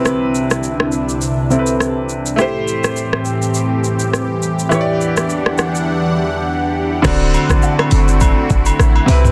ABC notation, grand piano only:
X:1
M:4/4
L:1/8
Q:"Swing 16ths" 1/4=103
K:Dmix
V:1 name="Grand piano"
[C,CEB]4- [C,CEB] [C,CEAB]3 | [A,EGc]8 | [E,EG^cd]8 | [D,CFd]6- [D,CFd] [C,CEB] |]